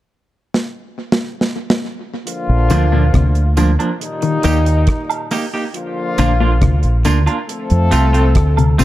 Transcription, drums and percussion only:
0.54 snare medium
1.12 snare medium
1.41 snare medium
1.70 snare medium
2.27 closed hi-hat medium
2.70 closed hi-hat medium
2.70 tambourine soft
3.14 kick loud
3.14 cross-stick medium
3.14 closed hi-hat medium
3.35 closed hi-hat soft
3.57 closed hi-hat medium
3.57 tambourine medium
3.79 closed hi-hat soft
3.79 high woodblock medium
4.01 closed hi-hat medium
4.22 closed hi-hat soft
4.43 closed hi-hat medium
4.43 tambourine medium
4.66 closed hi-hat medium
4.87 kick loud
4.87 cross-stick loud
4.87 closed hi-hat medium
5.10 closed hi-hat medium
5.10 high woodblock medium
5.31 open hi-hat medium
5.31 tambourine medium
5.74 closed hi-hat loud
6.18 closed hi-hat medium
6.18 tambourine soft
6.62 kick loud
6.62 cross-stick loud
6.62 closed hi-hat medium
6.83 closed hi-hat soft
7.05 closed hi-hat medium
7.05 tambourine medium
7.27 closed hi-hat soft
7.27 high woodblock medium
7.49 closed hi-hat medium
7.70 closed hi-hat soft
7.92 closed hi-hat medium
7.92 tambourine medium
8.14 closed hi-hat medium
8.35 kick loud
8.35 cross-stick loud
8.35 closed hi-hat medium
8.57 closed hi-hat medium
8.57 high woodblock medium
8.79 open hi-hat medium
8.79 tambourine medium

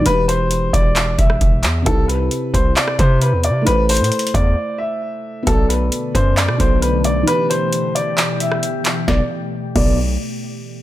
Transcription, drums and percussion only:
0.06 closed hi-hat medium
0.29 closed hi-hat medium
0.51 closed hi-hat medium
0.73 kick medium
0.73 closed hi-hat medium
0.96 clap loud
0.96 closed hi-hat medium
1.18 kick loud
1.18 closed hi-hat medium
1.30 cross-stick medium
1.41 kick loud
1.41 closed hi-hat medium
1.63 clap loud
1.63 closed hi-hat medium
1.86 kick loud
1.86 closed hi-hat medium
2.09 closed hi-hat medium
2.31 closed hi-hat medium
2.54 kick medium
2.54 closed hi-hat medium
2.76 clap loud
2.76 closed hi-hat medium
2.88 cross-stick loud
2.99 kick loud
2.99 closed hi-hat medium
3.21 closed hi-hat medium
3.44 closed hi-hat medium
3.67 closed hi-hat medium
3.89 closed hi-hat medium
3.89 open hi-hat medium
3.97 closed hi-hat medium
4.04 closed hi-hat medium
4.12 closed hi-hat medium
4.19 closed hi-hat medium
4.27 closed hi-hat medium
4.34 kick medium
4.34 closed hi-hat medium
5.47 kick loud
5.47 closed hi-hat medium
5.70 closed hi-hat medium
5.92 closed hi-hat medium
6.15 kick medium
6.15 closed hi-hat medium
6.37 clap loud
6.37 closed hi-hat medium
6.49 cross-stick loud
6.60 kick loud
6.60 closed hi-hat medium
6.82 closed hi-hat medium
7.04 closed hi-hat medium
7.28 closed hi-hat medium
7.51 closed hi-hat medium
7.73 closed hi-hat medium
7.96 closed hi-hat medium
8.18 clap loud
8.18 closed hi-hat medium
8.40 closed hi-hat medium
8.52 cross-stick medium
8.63 closed hi-hat medium
8.85 clap loud
8.85 closed hi-hat medium
9.08 kick loud
9.08 snare medium
9.76 kick loud
9.76 crash medium

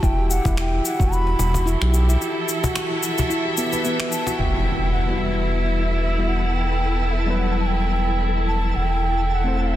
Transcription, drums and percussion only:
0.03 kick loud
0.03 cabasa soft
0.31 cabasa medium
0.45 cajon bass medium
0.45 kick medium
0.45 cabasa soft
0.57 finger snap medium
0.57 cabasa soft
0.85 cabasa medium
1.00 kick loud
1.00 cabasa soft
1.13 cabasa soft
1.27 cajon slap soft
1.39 cajon slap medium
1.39 cabasa medium
1.54 cajon bass medium
1.54 cajon slap soft
1.54 cabasa soft
1.67 cabasa soft
1.81 finger snap medium
1.81 cajon slap soft
1.94 cabasa medium
2.09 cabasa soft
2.22 cabasa soft
2.49 cabasa medium
2.64 cajon bass medium
2.64 cabasa soft
2.76 finger snap medium
2.76 cajon slap medium
2.76 cabasa soft
3.03 cabasa medium
3.18 cajon bass medium
3.18 cajon slap soft
3.18 cabasa soft
3.31 cabasa soft
3.57 cabasa medium
3.73 cajon slap soft
3.73 cabasa soft
3.85 cabasa soft
4.00 finger snap medium
4.12 cabasa medium
4.27 cajon slap medium
4.27 cabasa soft
4.82 cabasa soft

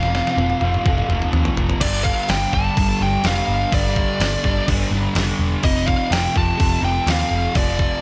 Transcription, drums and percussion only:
0.03 snare medium
0.15 snare medium
0.27 snare medium
0.38 high tom medium
0.50 high tom medium
0.61 high tom medium
0.74 mid tom medium
0.86 kick loud
0.86 mid tom medium
0.98 mid tom medium
1.10 mid tom medium
1.22 mid tom medium
1.33 mid tom medium
1.45 floor tom medium
1.57 floor tom loud
1.70 floor tom medium
1.81 kick loud
1.81 crash loud
1.81 crash medium
2.05 kick medium
2.29 snare loud
2.29 crash medium
2.53 kick medium
2.77 kick loud
2.77 crash medium
3.24 snare loud
3.24 crash medium
3.72 kick loud
3.72 crash medium
3.96 kick medium
4.20 snare loud
4.20 crash medium
4.44 kick medium
4.68 kick loud
4.68 crash medium
5.15 snare loud
5.15 crash medium
5.63 kick loud
5.63 crash medium
5.88 kick medium
6.12 snare loud
6.12 crash medium
6.36 kick medium
6.60 kick loud
6.60 crash medium
7.07 snare loud
7.07 crash medium
7.55 kick loud
7.55 crash medium
7.79 kick medium

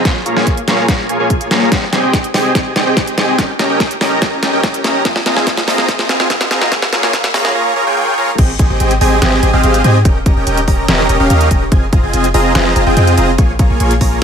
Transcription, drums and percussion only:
0.05 kick loud
0.05 snare medium
0.05 closed hi-hat medium
0.26 closed hi-hat medium
0.37 snare medium
0.47 kick medium
0.47 closed hi-hat medium
0.57 closed hi-hat medium
0.68 snare medium
0.68 closed hi-hat medium
0.88 kick medium
0.88 snare medium
0.88 closed hi-hat medium
1.09 closed hi-hat medium
1.30 kick medium
1.30 closed hi-hat medium
1.41 closed hi-hat medium
1.51 snare medium
1.51 closed hi-hat medium
1.72 kick loud
1.72 snare medium
1.72 closed hi-hat medium
1.93 snare medium
1.93 closed hi-hat medium
2.13 kick medium
2.13 snare medium
2.13 closed hi-hat medium
2.24 closed hi-hat medium
2.34 snare medium
2.34 open hi-hat medium
2.55 kick loud
2.55 snare medium
2.55 closed hi-hat medium
2.76 snare medium
2.76 closed hi-hat medium
2.97 kick medium
2.97 snare medium
2.97 closed hi-hat medium
3.07 closed hi-hat medium
3.18 snare medium
3.18 closed hi-hat medium
3.38 kick loud
3.38 snare medium
3.38 closed hi-hat medium
3.59 snare medium
3.59 closed hi-hat medium
3.80 kick loud
3.80 snare medium
3.80 closed hi-hat medium
3.91 closed hi-hat medium
4.01 snare medium
4.01 open hi-hat loud
4.22 kick loud
4.22 snare medium
4.22 closed hi-hat medium
4.43 snare medium
4.43 closed hi-hat medium
4.63 kick loud
4.63 snare medium
4.63 closed hi-hat medium
4.74 closed hi-hat medium
4.84 snare medium
4.84 closed hi-hat medium
5.05 kick loud
5.05 snare medium
5.05 closed hi-hat medium
5.16 snare medium
5.26 snare medium
5.26 closed hi-hat medium
5.37 snare medium
5.47 kick loud
5.47 snare loud
5.47 closed hi-hat medium
5.57 snare medium
5.57 closed hi-hat medium
5.68 snare medium
5.68 open hi-hat loud
5.78 snare medium
5.88 kick loud
5.88 snare medium
5.88 closed hi-hat medium
5.99 snare medium
6.09 snare loud
6.09 closed hi-hat medium
6.20 snare medium
6.30 kick loud
6.30 snare loud
6.30 closed hi-hat medium
6.41 snare medium
6.41 closed hi-hat medium
6.51 snare loud
6.51 closed hi-hat medium
6.62 snare medium
6.72 kick loud
6.72 snare loud
6.72 closed hi-hat medium
6.82 snare medium
6.93 snare loud
6.93 closed hi-hat medium
7.03 snare medium
7.13 kick loud
7.13 snare loud
7.13 closed hi-hat medium
7.24 snare medium
7.24 closed hi-hat medium
7.34 snare loud
7.34 open hi-hat medium
7.45 snare loud
8.38 kick loud
8.38 closed hi-hat medium
8.38 crash loud
8.59 kick loud
8.59 closed hi-hat medium
8.80 closed hi-hat medium
8.91 closed hi-hat medium
9.01 open hi-hat medium
9.22 snare loud
9.22 closed hi-hat medium
9.43 closed hi-hat medium
9.64 closed hi-hat medium
9.74 closed hi-hat medium
9.84 closed hi-hat medium
10.05 kick loud
10.05 closed hi-hat medium
10.26 kick loud
10.26 closed hi-hat medium
10.47 closed hi-hat medium
10.57 closed hi-hat medium
10.68 kick medium
10.68 open hi-hat medium
10.88 snare loud
10.88 closed hi-hat medium
11.09 closed hi-hat medium
11.30 closed hi-hat medium
11.41 closed hi-hat medium
11.51 kick medium
11.51 closed hi-hat medium
11.72 kick loud
11.72 closed hi-hat medium
11.93 kick loud
11.93 closed hi-hat medium
12.13 closed hi-hat medium
12.24 closed hi-hat medium
12.34 open hi-hat medium
12.55 snare loud
12.55 closed hi-hat medium
12.76 closed hi-hat medium
12.97 closed hi-hat medium
13.07 closed hi-hat medium
13.18 closed hi-hat medium
13.38 kick loud
13.38 closed hi-hat medium
13.59 kick loud
13.59 closed hi-hat medium
13.80 closed hi-hat medium
13.91 closed hi-hat medium
14.01 kick medium
14.01 open hi-hat medium

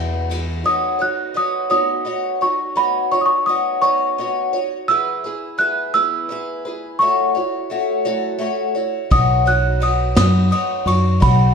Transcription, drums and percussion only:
0.31 ride medium
9.11 kick medium
9.11 ride medium
9.46 ride soft
9.81 ride medium
10.16 snare loud
10.16 ride medium
10.52 ride medium
10.87 ride medium
11.22 kick medium
11.22 ride medium

